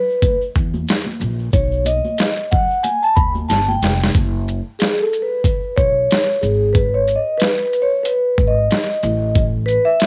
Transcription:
Already playing: vibraphone B4
0.10 shaker
0.22 kick, closed hi-hat, high conga, shaker
0.41 shaker
0.55 upright bass E2, kick, shaker
0.74 high conga, shaker
0.87 snare, closed hi-hat, shaker
1.06 high conga, shaker
1.20 upright bass A#1, low conga, shaker
1.39 shaker
1.52 upright bass B1, vibraphone C#5, kick, closed hi-hat, shaker
1.72 shaker
1.85 vibraphone D#5, closed hi-hat, high conga, shaker
2.05 high conga, shaker
2.18 snare, closed hi-hat, shaker
2.37 shaker
2.51 vibraphone F#5, kick, low conga, shaker
2.71 shaker
2.83 vibraphone G#5, closed hi-hat, high conga, shaker
3.03 vibraphone A5, shaker
3.16 upright bass D#2, vibraphone B5, kick, shaker
3.35 high conga, shaker
3.49 upright bass G1, vibraphone A5, snare, closed hi-hat, shaker
3.68 vibraphone G5, high conga, shaker
3.82 upright bass F1, snare, closed hi-hat, low conga, shaker
4.01 snare, shaker
4.15 upright bass F#1, kick, closed hi-hat
4.48 shaker
4.79 vibraphone G#4, snare, closed hi-hat
5.01 vibraphone A4
5.13 shaker
5.22 vibraphone B4
5.44 kick, closed hi-hat
5.76 upright bass B1, vibraphone C#5, kick, shaker
6.11 snare, closed hi-hat
6.41 upright bass G#1, vibraphone G#4, shaker
6.73 vibraphone B4, kick, closed hi-hat
6.94 vibraphone C#5
7.08 shaker
7.16 vibraphone D#5
7.38 vibraphone B4, closed hi-hat
7.42 snare
7.73 shaker
7.82 vibraphone C#5
8.03 vibraphone B4, closed hi-hat
8.38 upright bass G#1, kick, shaker
8.47 vibraphone D#5
8.71 snare, closed hi-hat
9.03 upright bass A1, shaker
9.35 kick, closed hi-hat
9.66 vibraphone B4, shaker
9.85 vibraphone E5
10.00 snare, closed hi-hat

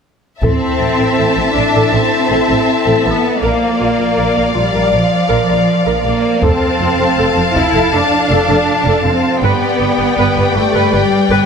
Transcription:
0.42 double bass section A1, cello section C4, french horn section E4 A4, viola section A4, violin section E5 A5, taiko
0.80 double bass section A1, viola section E4
0.98 double bass section A1, viola section A4
1.18 double bass section A1, viola section A4
1.36 double bass section A1, viola section A4
1.55 double bass section A1, cello section D4, viola section E4
1.74 double bass section A1, viola section A4
1.92 double bass section A1, cello section C4, viola section A4
2.30 double bass section A1, viola section A4
2.49 double bass section A1, viola section A4
2.86 double bass section A1, viola section A4
3.05 double bass section A1, cello section B3, viola section A4
3.42 double bass section A#1, french horn section F3 D5, cello section A#3, viola section A#4, violin section D5 F5
3.80 double bass section A#1, viola section F4
3.99 double bass section A#1, viola section A#4
4.17 double bass section A#1, viola section A#4
4.36 double bass section A#1, viola section A#4
4.54 double bass section A#1, cello section G3, viola section F4
4.73 double bass section A#1, viola section A#4
4.92 double bass section A#1, cello section F3, viola section A#4
5.29 double bass section A#1, viola section A#4
5.48 double bass section A#1, viola section A#4
5.86 double bass section A#1, viola section A#4
6.04 double bass section A#1, cello section A#3, viola section A#4
6.42 double bass section F1, cello section C4, viola section A4, french horn section A4, violin section F5 A5, taiko
6.79 double bass section F1, viola section F4
6.98 double bass section F1, viola section A4
7.17 double bass section F1, viola section A4
7.36 double bass section F1, viola section A4
7.55 double bass section F1, cello section E4, viola section F4, taiko
7.73 double bass section F1, viola section A4
7.93 double bass section F1, cello section D4, viola section A4
8.30 double bass section F1, viola section A4
8.49 double bass section F1, viola section A4
8.86 double bass section F1, viola section A4
9.05 double bass section F1, cello section C4, viola section A4
9.42 double bass section G1, cello section B3, french horn section G4 B4, viola section B4, violin section D5 G5
9.80 double bass section G1, viola section G4
9.98 double bass section G1, viola section B4
10.17 double bass section G1, viola section B4
10.36 double bass section G1, viola section B4
10.55 double bass section G1, cello section A3, viola section G4
10.74 double bass section G1, viola section B4
10.93 double bass section G1, cello section G3, viola section B4
11.30 double bass section G1, viola section B4

